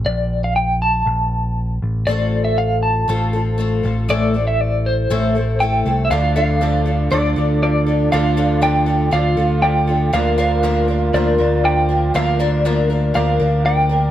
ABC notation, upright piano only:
X:1
M:4/4
L:1/8
Q:1/4=119
K:Dm
V:1 name="Upright piano"
z8 | z8 | z8 | [F,DAd]2 [F,DAd]2 [F,DAd]2 [F,DAf]2 |
[F,DAd]2 [F,DAd]2 [F,DAd]2 [F,DAd]2 | [F,DBd]2 [F,DBf]2 [F,DBc]2 [F,DBd]2 | [F,DBe]2 [F,DBf]2 [F,DBd]2 [F,DBd]2 |]
V:2 name="Upright piano" clef=bass
z8 | z8 | z8 | [D,,D,]8 |
[D,,D,]8 | [D,,D,]8 | [D,,D,]8 |]